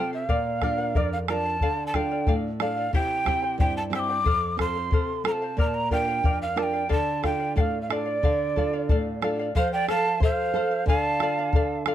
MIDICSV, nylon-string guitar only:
0, 0, Header, 1, 2, 480
1, 0, Start_track
1, 0, Key_signature, -1, "minor"
1, 0, Tempo, 661521
1, 211, Time_signature, 2, 2, 24, 8
1, 8669, End_track
2, 0, Start_track
2, 0, Title_t, "Nylon-string guitar"
2, 0, Program_c, 0, 24
2, 0, Note_on_c, 0, 48, 62
2, 0, Note_on_c, 0, 60, 44
2, 0, Note_on_c, 0, 65, 44
2, 0, Note_on_c, 0, 69, 49
2, 169, Note_off_c, 0, 60, 0
2, 170, Note_off_c, 0, 65, 0
2, 173, Note_off_c, 0, 69, 0
2, 199, Note_off_c, 0, 48, 0
2, 214, Note_on_c, 0, 46, 61
2, 453, Note_on_c, 0, 62, 48
2, 457, Note_on_c, 0, 65, 43
2, 460, Note_on_c, 0, 70, 54
2, 678, Note_off_c, 0, 46, 0
2, 701, Note_on_c, 0, 41, 60
2, 836, Note_off_c, 0, 62, 0
2, 838, Note_off_c, 0, 65, 0
2, 840, Note_off_c, 0, 70, 0
2, 938, Note_on_c, 0, 62, 47
2, 942, Note_on_c, 0, 65, 43
2, 946, Note_on_c, 0, 70, 50
2, 1127, Note_off_c, 0, 62, 0
2, 1129, Note_off_c, 0, 65, 0
2, 1132, Note_off_c, 0, 70, 0
2, 1161, Note_off_c, 0, 41, 0
2, 1177, Note_on_c, 0, 50, 62
2, 1412, Note_on_c, 0, 62, 47
2, 1415, Note_on_c, 0, 65, 45
2, 1420, Note_on_c, 0, 69, 50
2, 1640, Note_off_c, 0, 50, 0
2, 1645, Note_on_c, 0, 45, 55
2, 1795, Note_off_c, 0, 62, 0
2, 1797, Note_off_c, 0, 65, 0
2, 1800, Note_off_c, 0, 69, 0
2, 1883, Note_on_c, 0, 62, 42
2, 1886, Note_on_c, 0, 65, 40
2, 1887, Note_on_c, 0, 69, 51
2, 2078, Note_off_c, 0, 62, 0
2, 2079, Note_off_c, 0, 65, 0
2, 2080, Note_off_c, 0, 69, 0
2, 2113, Note_off_c, 0, 45, 0
2, 2124, Note_on_c, 0, 48, 62
2, 2360, Note_on_c, 0, 60, 46
2, 2366, Note_on_c, 0, 64, 42
2, 2368, Note_on_c, 0, 67, 52
2, 2593, Note_off_c, 0, 48, 0
2, 2596, Note_on_c, 0, 43, 59
2, 2749, Note_off_c, 0, 60, 0
2, 2750, Note_off_c, 0, 64, 0
2, 2753, Note_off_c, 0, 67, 0
2, 2830, Note_on_c, 0, 60, 48
2, 2837, Note_on_c, 0, 64, 44
2, 2838, Note_on_c, 0, 67, 53
2, 3030, Note_off_c, 0, 60, 0
2, 3035, Note_off_c, 0, 64, 0
2, 3035, Note_off_c, 0, 67, 0
2, 3069, Note_off_c, 0, 43, 0
2, 3079, Note_on_c, 0, 41, 61
2, 3315, Note_on_c, 0, 60, 48
2, 3319, Note_on_c, 0, 65, 46
2, 3320, Note_on_c, 0, 69, 51
2, 3551, Note_off_c, 0, 41, 0
2, 3561, Note_on_c, 0, 48, 54
2, 3705, Note_off_c, 0, 60, 0
2, 3708, Note_off_c, 0, 65, 0
2, 3708, Note_off_c, 0, 69, 0
2, 3801, Note_on_c, 0, 60, 44
2, 3805, Note_on_c, 0, 65, 41
2, 3808, Note_on_c, 0, 69, 49
2, 3998, Note_off_c, 0, 60, 0
2, 3999, Note_off_c, 0, 65, 0
2, 4001, Note_off_c, 0, 69, 0
2, 4032, Note_off_c, 0, 48, 0
2, 4040, Note_on_c, 0, 46, 61
2, 4290, Note_on_c, 0, 62, 47
2, 4292, Note_on_c, 0, 65, 45
2, 4294, Note_on_c, 0, 70, 50
2, 4511, Note_off_c, 0, 46, 0
2, 4525, Note_on_c, 0, 41, 58
2, 4675, Note_off_c, 0, 62, 0
2, 4675, Note_off_c, 0, 65, 0
2, 4678, Note_off_c, 0, 70, 0
2, 4759, Note_on_c, 0, 62, 49
2, 4762, Note_on_c, 0, 65, 45
2, 4766, Note_on_c, 0, 70, 51
2, 4957, Note_off_c, 0, 62, 0
2, 4959, Note_off_c, 0, 65, 0
2, 4959, Note_off_c, 0, 70, 0
2, 4994, Note_off_c, 0, 41, 0
2, 5005, Note_on_c, 0, 50, 63
2, 5250, Note_on_c, 0, 62, 47
2, 5251, Note_on_c, 0, 65, 49
2, 5256, Note_on_c, 0, 69, 49
2, 5475, Note_off_c, 0, 50, 0
2, 5483, Note_on_c, 0, 45, 64
2, 5635, Note_off_c, 0, 62, 0
2, 5635, Note_off_c, 0, 65, 0
2, 5639, Note_off_c, 0, 69, 0
2, 5730, Note_on_c, 0, 62, 49
2, 5735, Note_on_c, 0, 65, 37
2, 5736, Note_on_c, 0, 69, 51
2, 5923, Note_off_c, 0, 62, 0
2, 5927, Note_off_c, 0, 65, 0
2, 5927, Note_off_c, 0, 69, 0
2, 5954, Note_off_c, 0, 45, 0
2, 5971, Note_on_c, 0, 50, 63
2, 6212, Note_on_c, 0, 62, 46
2, 6215, Note_on_c, 0, 65, 43
2, 6219, Note_on_c, 0, 69, 50
2, 6438, Note_off_c, 0, 50, 0
2, 6452, Note_on_c, 0, 45, 58
2, 6597, Note_off_c, 0, 62, 0
2, 6599, Note_off_c, 0, 65, 0
2, 6601, Note_off_c, 0, 69, 0
2, 6686, Note_on_c, 0, 62, 48
2, 6690, Note_on_c, 0, 65, 42
2, 6693, Note_on_c, 0, 69, 51
2, 6882, Note_off_c, 0, 62, 0
2, 6884, Note_off_c, 0, 65, 0
2, 6884, Note_off_c, 0, 69, 0
2, 6919, Note_off_c, 0, 45, 0
2, 6928, Note_on_c, 0, 53, 61
2, 7170, Note_on_c, 0, 69, 54
2, 7400, Note_off_c, 0, 69, 0
2, 7402, Note_on_c, 0, 72, 53
2, 7641, Note_off_c, 0, 72, 0
2, 7645, Note_on_c, 0, 69, 54
2, 7863, Note_off_c, 0, 53, 0
2, 7878, Note_on_c, 0, 50, 67
2, 7882, Note_off_c, 0, 69, 0
2, 8126, Note_on_c, 0, 65, 56
2, 8363, Note_off_c, 0, 65, 0
2, 8363, Note_on_c, 0, 69, 52
2, 8600, Note_off_c, 0, 69, 0
2, 8603, Note_on_c, 0, 65, 53
2, 8669, Note_off_c, 0, 50, 0
2, 8669, Note_off_c, 0, 65, 0
2, 8669, End_track
0, 0, End_of_file